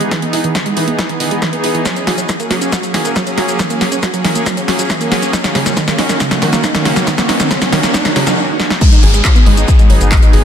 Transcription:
0.01 E3 G#3 B3 D#4 G#4, closed hi-hat
0.11 E3 B3 D#4 G#4, kick, snare, closed hi-hat
0.22 B3, closed hi-hat
0.33 E1 E4, open hi-hat
0.44 E3, closed hi-hat
0.55 D#3 E3 B3 D#4 G#4, kick, snare, closed hi-hat
0.66 E3 G#3 B3 D#4 G#4, closed hi-hat
0.76 E1 E3 B3 D#4 G#4, open hi-hat
0.87 E3 B3 D#4 G#4, closed hi-hat
0.99 E4, kick, snare, closed hi-hat
1.09 E3, closed hi-hat
1.20 E1 D#3 E3 B3 D#4 G#4, open hi-hat
1.31 E1 E3 G#3 B3 D#4 G#4, closed hi-hat
1.42 E3 B3 D#4 G#4, kick, snare, closed hi-hat
1.52 E3 B3 D#4 G#4, closed hi-hat
1.64 E1 E4, open hi-hat
1.74 E3 B3 D#4 G#4, closed hi-hat
1.85 F#3 A#3 C#4 G#4, kick, snare, closed hi-hat, riser, shaker
1.96 C#4, closed hi-hat, shaker
2.07 F#1 F#4, snare, open hi-hat
2.18 F#3, closed hi-hat, shaker
2.29 E3 F#3 A#3 C#4 G#4, kick, snare, closed hi-hat, shaker
2.40 F#3 A#3 C#4 G#4, closed hi-hat, shaker
2.51 F#1 F#3 A#3 C#4 G#4, snare, open hi-hat
2.61 F#3 A#3 C#4 G#4, closed hi-hat, shaker
2.72 F#4, kick, snare, closed hi-hat, shaker
2.83 F#3, closed hi-hat, shaker
2.94 F#1 E3 F#3 A#3 C#4 G#4, snare, open hi-hat
3.05 E1 F#3 A#3 C#4 G#4, closed hi-hat, shaker
3.16 F#3 A#3 C#4 G#4, kick, snare, closed hi-hat, shaker
3.27 F#3 A#3 C#4 G#4, closed hi-hat, shaker
3.38 F#1 F#4, snare, open hi-hat
3.48 F#3 A#3 C#4 G#4, closed hi-hat, shaker
3.59 E3 F#3 A#3 C#4 G#4, kick, snare, closed hi-hat, shaker
3.70 A#3, closed hi-hat, shaker
3.81 F#1 F#3, snare, open hi-hat
3.92 C#4, closed hi-hat, shaker
4.03 F#3 A#3 C#4 F#4 G#4, kick, snare, closed hi-hat, shaker
4.13 F#3 A#3 C#4 G#4, closed hi-hat, shaker
4.24 F#1 E3 F#3 A#3 C#4 G#4, snare, open hi-hat
4.35 F#3 A#3 C#4 G#4, closed hi-hat, shaker
4.46 F#3, kick, snare, closed hi-hat, shaker
4.57 C#4, closed hi-hat, shaker
4.68 F#1 F#3 A#3 C#4 F#4 G#4, snare, open hi-hat
4.79 E1 F#3 A#3 C#4 G#4, closed hi-hat, shaker
4.89 E3 F#3 A#3 C#4 G#4, kick, snare, closed hi-hat, shaker
5.00 F#3 A#3 C#4 G#4, closed hi-hat, shaker
5.12 F#1 F#3, snare, open hi-hat
5.22 F#3 A#3 C#4 G#4, closed hi-hat, shaker
5.33 D#3 A#3 C#4 D#4 F#4, kick, snare, closed hi-hat, shaker
5.44 D#3, snare, closed hi-hat, shaker
5.55 D#2 C#3, snare, open hi-hat
5.66 F#3, snare, closed hi-hat, shaker
5.76 D#3 A#3 C#4 F#4, kick, snare, closed hi-hat, shaker
5.87 D#3 A#3 C#4 F#4, snare, closed hi-hat, shaker
5.98 D#2 D#3 A#3 C#4 D#4 F#4, snare, open hi-hat
6.09 D#3 A#3 C#4 F#4, snare, closed hi-hat, shaker
6.20 C#3, kick, snare, closed hi-hat, shaker
6.31 F#3, snare, closed hi-hat, shaker
6.42 D#2 D#3 A#3 C#4 F#4, snare, open hi-hat
6.53 C#2 D#3 A#3 C#4 F#4, snare, closed hi-hat, shaker
6.63 D#3 A#3 C#4 D#4 F#4, kick, snare, closed hi-hat, shaker
6.74 D#3 A#3 C#4 F#4, snare, closed hi-hat, shaker
6.85 D#2 C#3, snare, open hi-hat
6.96 D#3 F#3 A#3 C#4 F#4, snare, closed hi-hat, shaker
7.07 D#3 A#3 C#4 F#4, kick, snare, closed hi-hat, shaker
7.18 A#3, snare, closed hi-hat, shaker
7.29 D#2 D#4, snare, open hi-hat
7.40 D#3, snare, closed hi-hat, shaker
7.51 C#3 D#3 A#3 C#4 F#4, kick, snare, closed hi-hat, shaker
7.61 D#3 F#3 A#3 C#4 F#4, snare, closed hi-hat, shaker
7.72 D#2 D#3 A#3 C#4 F#4, snare, open hi-hat
7.83 D#3 A#3 C#4 F#4, snare, closed hi-hat, shaker
7.94 D#4, kick, snare, closed hi-hat, shaker
8.05 D#3, snare, closed hi-hat, shaker
8.16 D#2 C#3 D#3 A#3 C#4 F#4, snare, open hi-hat
8.27 C#2 D#3 F#3 A#3 C#4 F#4, snare, closed hi-hat, shaker
8.60 snare
8.70 snare
8.81 F#3 G#3 B3 D#4 G#4, kick, closed hi-hat, crash, downlifter, shaker
8.92 D#4, closed hi-hat, shaker
9.03 G#1 G#4, open hi-hat
9.14 G#3, closed hi-hat, shaker
9.24 F#3 B3 D#4 G#4, kick, clap, closed hi-hat, shaker
9.35 F#3 B3 D#4 G#4, closed hi-hat, shaker
9.46 G#1 F#3 G#3 B3 D#4 G#4, open hi-hat
9.57 F#3 B3 D#4 G#4, closed hi-hat, shaker
9.68 G#4, kick, closed hi-hat, shaker
9.79 G#3, closed hi-hat, shaker
9.89 G#1 F#3 B3 D#4 G#4, open hi-hat
10.00 G#1 F#3 B3 D#4 G#4, closed hi-hat, shaker
10.11 F#3 G#3 B3 D#4 G#4, kick, clap, closed hi-hat, shaker
10.17 closed hi-hat
10.22 F#3 B3 D#4 G#4, closed hi-hat, shaker
10.33 G#1 G#4, open hi-hat

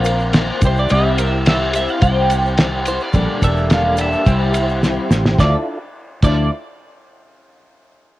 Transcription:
Already playing: A#1 C4 F4 A#4 C5 F5
0.04 C4 F4 A#4, ride, shaker
0.20 shaker
0.32 A#3 C4 F4 A#4, snare, ride, shaker
0.60 C2 C4 E4 G4, kick, ride, shaker
0.65 C4 G4 C5
0.76 D5, shaker
0.89 C2 C3 G3 C4 E4 G4 E5, ride, shaker
1.17 C4 E4 G4 A#4, ride, shaker
1.46 G3 C4 E4 G4 E5, snare, ride, shaker
1.73 E4 G4 E5, ride, shaker
1.77 C4
1.88 F5, shaker
1.99 C2 C3 G3 C4 E4 G4 G5, kick, ride, shaker
2.28 C4 E4 G4, ride, shaker
2.46 shaker
2.57 G3 C4 E4 G4, snare, ride, shaker
2.85 C4 E4 G4 C5, ride, shaker
3.00 D5, shaker
3.12 A#1 A#2 D3 G3 A#3 D4 G4 A4, kick, ride, shaker
3.16 A#3 D4 G4 A4
3.42 E1 G3 A#3 D4 G4 A4 E5, kick, ride, shaker
3.57 shaker
3.69 G3 A#3 D4 A4, snare, ride, shaker
3.74 F5
3.95 G3 A#3 D4 A4, ride, shaker
4.01 E5
4.12 shaker
4.24 C2 C3 G3 C4 E4 G4 C5, kick, ride, shaker
4.52 C4 E4 G4, ride, shaker
4.69 shaker
4.81 G3 C4 E4 G4, snare, shaker
5.09 A1 C4 E4 G4, snare, shaker
5.25 snare, shaker
5.38 D2 D3 F3 D4 E4 F4 A4 D5, kick, snare, shaker
6.22 D2 D3 F3 D4 E4 F4 A4 D5, kick, crash, shaker

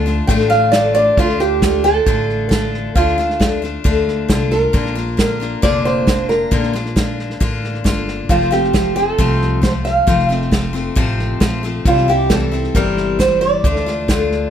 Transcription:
Already playing: D2 A5
0.06 A3 D4 F4, snare
0.27 A1 D3 A3 D4 F4 G5, kick, snare
0.40 snare
0.50 F5, snare
0.72 D3 A3 D4 D5, snare, hi-hat pedal
0.76 F4
0.95 D4 F4 D5, snare
0.99 A3
1.17 D2 D3 A3 D4 F4, kick, snare
1.29 snare
1.40 A3 D4 F4 G4, snare
1.62 D3 A3 D4 F4, kick, snare, hi-hat pedal
1.84 A3 D4 F4 A4, snare
2.06 A1 D3 A3 D4 F4, kick, snare
2.29 snare
2.49 D3 A3 A4, kick, snare, hi-hat pedal
2.53 D4 F4
2.74 snare
2.95 D2 D3 A3 D4 F4, kick, snare
3.07 snare
3.18 A3 D4 F4, snare
3.30 snare
3.40 D3 A3 D4 F4, kick, snare, hi-hat pedal
3.62 A3 D4 F4, snare
3.84 D2 D3 A3 D4 F4, kick, snare
4.08 snare
4.29 C2 D3 A3 D4 F4, kick, snare, hi-hat pedal
4.51 A3 D4 F4 A#4, snare
4.73 A#1 A#2 D3 A#3 D4 F4, kick, snare
4.85 snare
4.95 A#3 D4 F4, snare
5.17 D3 A#3 D4 F4 A#4, kick, snare, hi-hat pedal
5.40 A#3 D4 F4, snare
5.62 F1 A#2 D3 A#3 D4 F4 D5, kick, snare
5.85 C5, snare
6.07 D3 A#3 D4 F4, kick, snare, hi-hat pedal
6.29 A#4, snare
6.51 A#1 A#2 D3 A#3 D4 F4, kick, snare
6.63 snare
6.73 A#3 D4 F4, snare
6.85 snare
6.96 D3 A#3 D4 F4, kick, snare, hi-hat pedal
7.19 snare
7.30 snare
7.40 A1 D3 A#3 D4 F4, kick, snare
7.64 snare
7.74 snare
7.84 G1 D3 A#3 D4 F4, kick, snare, hi-hat pedal
8.08 snare
8.29 F1 F2 C3 F3 A3 C4 F4, kick, snare
8.41 snare
8.51 F3 A3 C4 F4 G4, snare
8.64 snare
8.73 F3 A3 C4 F4, kick, snare, hi-hat pedal
8.96 F3 A3 C4 F4 A4, snare
9.18 C2 F2 C3 F3 A3 C4 F4, kick, snare
9.41 snare
9.62 F3 A3 C4 F4 C5, kick, snare, hi-hat pedal
9.85 F5, snare
10.07 F1 F2 C3 F3 A3 C4 F4, kick, snare
10.19 snare
10.29 F3 A3 C4 F4 E5, snare
10.41 snare
10.51 F3 A3 C4 F4, kick, snare, hi-hat pedal
10.73 F3 A3 C4 F4, snare
10.95 A1 F2 C3 F3 A3 C4 F4, kick, snare
11.19 snare
11.40 A#1 F3 A3 C4 F4, kick, snare, hi-hat pedal
11.63 F3 A3 C4 F4, snare
11.85 C2 C3 E3 G3 C4 E4 F4, kick, snare
11.97 snare
12.08 C4 E4 G4, snare
12.30 E3 G3 C4 E4 A4, kick, snare, hi-hat pedal
12.52 G3 C4 E4, snare
12.64 snare
12.75 G1 C3 E3 G3 C4 E4 A#4, kick, snare
12.97 snare
13.19 E3 G3 C4 E4 C5, kick, snare, hi-hat pedal
13.41 D5, snare
13.64 D2 D3 A3 D4 F4, kick, snare
13.76 snare
13.86 A3 D4 F4, snare
14.08 D3 A3 D4 F4, kick, snare, hi-hat pedal
14.31 snare

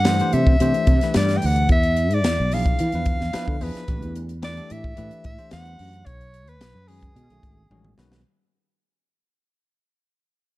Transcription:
Already playing: G2 F#5
0.05 E3 A3 D4 G4 C5, snare, closed hi-hat
0.19 E3 A3 D4 G4 C5, closed hi-hat
0.33 C3 E5, closed hi-hat
0.47 kick
0.60 C3 E3 A3 D4 G4 C5, closed hi-hat
0.74 closed hi-hat
0.87 C3, kick, closed hi-hat
1.01 E3 A3 D4 G4 B4, snare, closed hi-hat
1.14 G2 D5, snare, closed hi-hat
1.29 snare, closed hi-hat
1.37 G5
1.42 D2, open hi-hat
1.46 F#5
1.56 closed hi-hat
1.69 E2 E5, kick, closed hi-hat
1.83 closed hi-hat
1.97 closed hi-hat
2.11 G#2 D5, closed hi-hat
2.24 E2, snare, closed hi-hat
2.40 B1
2.52 F3 B3 D4 E4 G#4 F5, open hi-hat
2.66 kick, closed hi-hat
2.79 E3, closed hi-hat
2.92 E2 F3 B3 D4 E4 B4, closed hi-hat
3.06 kick, closed hi-hat
3.21 E2, snare
3.33 F3 B3 D4 E4 B4, muted fretless electric bass stroke, snare, closed hi-hat
3.48 D3, kick
3.61 E2 F3 B3 D4 E4 G#4 B4, open hi-hat
3.75 snare, closed hi-hat
3.88 A1 E3 A3 D4 G4 B4, kick, closed hi-hat
4.02 E2, closed hi-hat
4.16 closed hi-hat
4.29 closed hi-hat
4.42 E3 A3 D4 G4 B4 D5, snare, closed hi-hat
4.57 E3 A3 D4 G4 A4, closed hi-hat
4.70 A2 E5, closed hi-hat
4.84 kick
4.97 A2 E3 A3 D4 G4 B4, closed hi-hat
5.11 closed hi-hat
5.24 A2 E5, kick, closed hi-hat
5.38 E3 A3 D4 G4 C5, closed hi-hat
5.51 E2 F#5, snare, closed hi-hat
5.65 closed hi-hat
5.79 F#2, open hi-hat
5.93 closed hi-hat
6.06 B1 C#5, kick, closed hi-hat
6.21 closed hi-hat
6.34 closed hi-hat
6.47 D#2 B4, closed hi-hat
6.61 B1, snare, closed hi-hat
6.75 F#2
6.88 D#3 G#3 C#4 F#4 G#4 B4, open hi-hat
7.03 kick, closed hi-hat
7.16 B2, closed hi-hat
7.30 B1 D#3 A3 C#4 F#4 G#4, closed hi-hat
7.43 G#1, kick, closed hi-hat
7.70 A1 D#3 G#3 C#4 F#4 G#4, high tom
7.85 mid tom
7.98 B1 D#3 G#3 C#4 F#4 B4, snare
8.12 snare

